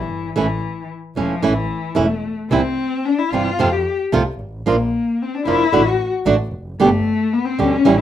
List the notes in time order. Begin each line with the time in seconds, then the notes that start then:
Already playing: E3
0.09 G1
0.36 A1 E3 A3 C#4 E4
1.16 E1 E3 F3 A3 C#4 E4
1.42 A1 E3 A3 C#4 E4
1.95 E1 E3 A3 C#4 E4
2.50 C2 C3 E3 G3 C4 E4
3.05 D4
3.19 E4
3.32 G1 C3 E3 G3 C4 E4 F4
3.59 F2 C3 F3 A3 C4 F4
3.72 G4
4.12 C2 C3 F3 A3 C4 F4
4.39 G#1
4.66 A#1 F3 A#3 D4 F4
5.22 C4
5.35 D4
5.45 F1 F3 A#3 D4 E4 F4
5.72 A1 D3 A3 D4 F#4
5.86 F#4
6.25 A1 D3 A3 D4 F#4
6.52 F1
6.79 G1 B2 D3 G3 A3 B3 G4
7.33 B3
7.46 C4
7.59 D2 B2 D3 G3 B3 C#4 G4
7.85 A1 E3 G3 C#4 E4